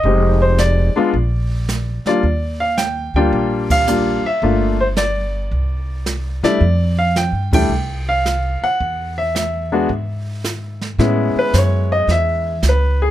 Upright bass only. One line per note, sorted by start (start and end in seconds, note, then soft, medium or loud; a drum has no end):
0.03 0.92 F1 medium
1.13 2.01 A#1 medium
2.05 muted upright bass stroke soft
2.23 3.11 D#2 medium
3.14 3.31 D2 medium
3.33 4.21 A#1 medium
4.24 muted upright bass stroke soft
4.42 5.47 G1 medium
5.52 6.40 C2 medium
6.43 6.59 C3 medium
6.61 7.30 F2 medium
7.32 7.50 G2 medium
7.52 7.68 E2 medium
7.69 8.58 C2 medium
8.62 muted upright bass stroke soft
8.80 9.85 E2 medium
9.89 10.94 G#2 medium
10.99 11.33 A2 medium
11.35 muted upright bass stroke soft
11.53 12.06 F#2 medium
12.07 12.60 E2 medium
12.63 13.11 C#2 medium